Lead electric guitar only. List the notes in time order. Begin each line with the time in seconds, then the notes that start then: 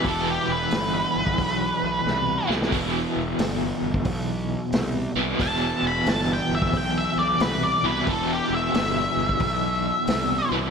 0.07 A4
0.31 G4
0.52 B4
5.42 A5
5.87 B5
6.09 A5
6.33 G5
6.55 E5
6.77 G5
6.98 E5
7.19 D5
7.42 B4
7.63 D5
7.85 B4
8.10 A4
8.33 G4
8.55 E5